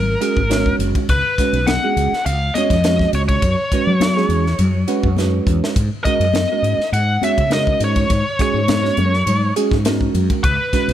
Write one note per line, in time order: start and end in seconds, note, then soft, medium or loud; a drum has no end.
0.00 0.15 G#1 medium
0.00 0.75 A#4 medium
0.21 0.40 G#3 medium
0.21 0.40 C#4 medium
0.21 0.40 F#4 medium
0.21 0.40 G#4 medium
0.21 hi-hat pedal medium
0.21 ride medium
0.37 0.72 G#1 medium
0.37 kick medium
0.50 1.06 G#3 medium
0.50 1.06 C#4 medium
0.50 1.06 F#4 medium
0.50 1.06 C#5 medium
0.50 snare medium
0.50 hi-hat pedal medium
0.50 ride medium
0.50 high conga medium
0.66 kick medium
0.79 0.92 F#1 medium
0.79 hi-hat pedal medium
0.79 ride medium
0.79 muted conga soft
0.95 kick medium
0.95 ride medium
1.09 1.21 C#2 medium
1.09 1.69 B4 medium
1.09 kick loud
1.09 hi-hat pedal medium
1.09 ride medium
1.09 muted conga soft
1.38 1.58 G#3 medium
1.38 1.58 C#4 medium
1.38 1.58 F#4 medium
1.38 1.57 B4 loud
1.38 muted fretless electric bass stroke soft
1.38 kick medium
1.38 snare soft
1.38 hi-hat pedal medium
1.38 ride medium
1.38 muted conga soft
1.53 1.77 B1 medium
1.53 ride medium
1.67 1.75 F#4 soft
1.67 1.76 G#4 soft
1.67 2.25 F#5 medium
1.67 snare medium
1.67 hi-hat pedal medium
1.67 ride medium
1.67 high conga medium
1.84 2.11 G#3 medium
1.84 2.11 C#4 medium
1.84 2.11 F#4 medium
1.84 2.11 G#4 medium
1.96 2.09 C#2 medium
1.96 hi-hat pedal medium
1.96 ride medium
2.12 muted fretless electric bass stroke soft
2.12 snare soft
2.26 2.50 C#2 medium
2.26 2.34 F#4 soft
2.26 2.34 C#5 soft
2.26 2.56 F5 medium
2.26 hi-hat pedal medium
2.26 ride medium
2.26 muted conga soft
2.54 2.75 G#3 medium
2.54 2.75 C#4 medium
2.54 2.75 F#4 medium
2.54 2.75 C#5 medium
2.54 3.09 D#5 medium
2.54 hi-hat pedal medium
2.54 ride medium
2.54 high conga medium
2.70 3.05 F2 medium
2.70 kick medium
2.70 snare soft
2.70 ride medium
2.84 3.41 G#3 medium
2.84 3.41 C#4 medium
2.84 3.40 F#4 medium
2.84 3.40 C#5 medium
2.84 snare medium
2.84 hi-hat pedal medium
2.84 ride medium
2.84 high conga medium
2.99 kick medium
2.99 snare soft
3.13 3.37 C#2 medium
3.13 3.20 C#5 medium
3.13 hi-hat pedal medium
3.13 ride medium
3.13 muted conga soft
3.29 5.43 C#5 medium
3.29 kick medium
3.29 ride soft
3.42 3.55 F#2 medium
3.42 kick loud
3.42 hi-hat pedal medium
3.42 ride medium
3.42 muted conga soft
3.71 3.92 G#3 medium
3.71 3.92 C#4 medium
3.71 3.92 F#4 medium
3.71 3.91 B4 medium
3.71 muted fretless electric bass stroke soft
3.71 kick medium
3.71 hi-hat pedal medium
3.71 ride medium
3.71 muted conga soft
3.87 4.22 F#3 medium
4.00 4.09 F#4 soft
4.00 snare loud
4.00 hi-hat pedal medium
4.00 ride medium
4.00 high conga medium
4.17 4.44 G#3 medium
4.17 4.45 C#4 medium
4.17 4.45 F#4 medium
4.17 4.44 G#4 medium
4.17 snare soft
4.29 4.53 E2 medium
4.29 hi-hat pedal medium
4.29 ride medium
4.46 snare soft
4.59 4.83 F#2 medium
4.59 4.67 F#4 soft
4.59 4.67 C#5 soft
4.59 hi-hat pedal medium
4.59 ride medium
4.59 muted conga soft
4.59 low conga medium
4.88 5.08 G#3 medium
4.88 5.07 C#4 medium
4.88 5.07 F#4 medium
4.88 5.08 B4 loud
4.88 5.16 F#5 medium
4.88 hi-hat pedal medium
4.88 ride medium
5.03 5.39 F#2 medium
5.03 kick medium
5.17 5.74 G#3 medium
5.17 5.74 C#4 medium
5.17 5.74 F#4 medium
5.17 5.74 B4 medium
5.17 5.72 C#5 medium
5.17 snare medium
5.17 hi-hat pedal medium
5.17 high conga medium
5.46 5.59 E2 medium
5.46 kick medium
5.46 hi-hat pedal medium
5.46 muted conga soft
5.64 snare medium
5.76 5.89 G#2 medium
5.76 kick medium
5.76 hi-hat pedal medium
5.76 ride medium
5.76 muted conga soft
6.04 6.25 G#3 medium
6.04 6.25 C#4 medium
6.04 6.25 F#4 medium
6.04 6.25 A#4 medium
6.04 6.89 D#5 medium
6.04 muted fretless electric bass stroke soft
6.04 kick medium
6.04 hi-hat pedal medium
6.04 ride medium
6.04 muted conga soft
6.20 6.44 F#2 medium
6.20 ride medium
6.34 6.43 F#4 soft
6.34 snare loud
6.34 hi-hat pedal medium
6.34 ride medium
6.34 high conga medium
6.38 6.43 A#4 soft
6.52 6.79 G#3 medium
6.52 6.79 C#4 medium
6.52 6.79 F#4 medium
6.52 6.79 A#4 medium
6.62 6.76 G#2 medium
6.62 hi-hat pedal medium
6.62 ride soft
6.78 muted fretless electric bass stroke soft
6.78 snare soft
6.92 7.17 G#2 medium
6.92 7.01 F#4 soft
6.92 7.01 A#4 soft
6.92 7.23 F#5 medium
6.92 hi-hat pedal medium
6.92 ride medium
6.92 muted conga soft
7.21 7.42 G#3 medium
7.21 7.42 C#4 medium
7.21 7.42 F#4 medium
7.21 7.42 C#5 loud
7.21 7.53 E5 medium
7.21 hi-hat pedal medium
7.21 ride soft
7.21 high conga medium
7.38 7.73 C#3 medium
7.38 kick medium
7.38 ride medium
7.50 8.08 G#3 medium
7.50 8.08 C#4 medium
7.50 8.08 F#4 medium
7.50 8.08 A#4 medium
7.50 7.79 D#5 medium
7.50 snare medium
7.50 hi-hat pedal medium
7.50 ride medium
7.50 high conga medium
7.67 kick medium
7.80 8.04 G#2 medium
7.80 hi-hat pedal medium
7.80 ride medium
7.84 8.40 C#5 medium
7.96 kick medium
7.96 ride medium
8.09 8.22 G#2 medium
8.09 kick loud
8.09 hi-hat pedal medium
8.09 ride medium
8.09 muted conga soft
8.39 8.59 G#3 medium
8.39 8.59 C#4 medium
8.39 8.59 F#4 medium
8.39 8.59 G#4 medium
8.39 9.53 C#5 medium
8.39 muted fretless electric bass stroke soft
8.39 kick medium
8.39 snare soft
8.39 hi-hat pedal medium
8.39 ride medium
8.39 muted conga soft
8.54 8.90 G#2 medium
8.68 8.76 F#4 soft
8.68 8.76 C#5 soft
8.68 snare medium
8.68 hi-hat pedal medium
8.68 ride medium
8.68 high conga medium
8.83 9.11 G#3 medium
8.83 9.11 C#4 medium
8.83 9.11 F#4 medium
8.83 9.11 C#5 medium
8.83 snare soft
8.97 9.21 F#2 medium
8.97 hi-hat pedal medium
8.97 ride medium
8.97 high conga medium
9.13 snare soft
9.26 9.51 G#2 medium
9.26 9.34 F#4 soft
9.26 9.34 C#5 soft
9.26 hi-hat pedal medium
9.26 ride medium
9.26 muted conga soft
9.26 low conga medium
9.56 9.75 G#3 medium
9.56 9.76 C#4 medium
9.56 9.75 F#4 medium
9.56 9.75 G#4 loud
9.56 hi-hat pedal medium
9.56 ride medium
9.71 10.07 G#2 medium
9.71 kick medium
9.71 snare soft
9.85 10.42 G#3 medium
9.85 10.42 C#4 medium
9.85 10.42 F#4 medium
9.85 10.42 A#4 medium
9.85 snare loud
9.85 hi-hat pedal medium
9.85 ride medium
9.85 high conga medium
10.01 kick medium
10.14 10.27 F#2 medium
10.14 hi-hat pedal medium
10.14 ride medium
10.14 muted conga soft
10.30 kick medium
10.30 ride medium
10.44 10.56 C#2 medium
10.44 10.93 B4 medium
10.44 kick loud
10.44 hi-hat pedal medium
10.44 ride medium
10.44 muted conga soft
10.73 10.93 G#3 medium
10.73 10.92 C#4 medium
10.73 10.92 F#4 medium
10.73 10.93 B4 medium
10.73 muted fretless electric bass stroke soft
10.73 kick medium
10.73 snare soft
10.73 hi-hat pedal medium
10.73 ride medium
10.73 muted conga soft
10.88 10.93 B1 medium
10.88 snare soft
10.88 ride medium